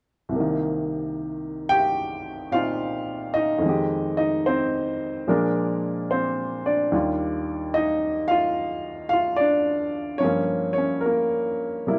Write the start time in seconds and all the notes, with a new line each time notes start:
0.29 C2 C3
0.36 A#3
0.40 D#3
1.69 G4 G5
2.52 A#2 C4 D#4 F4 F5
3.34 D#4 D#5
3.58 F2 D#3
3.66 G#3 G4
4.17 D#4 D#5
4.46 C4 C5
5.27 A#2 F3 G#3 A#3 D4 A#4
6.11 C4 C5
6.66 D4 D5
6.92 D#2 D#3 G3 F4
7.74 D#4 D#5
8.28 F4 F5
9.09 F5
9.13 F4
9.36 D4 D5
10.18 G2 C#5
10.22 F3 A#3 C#4
10.73 C#5
10.78 C#4
11.01 A#4
11.06 A#3
11.87 C3 G3 A#3 E4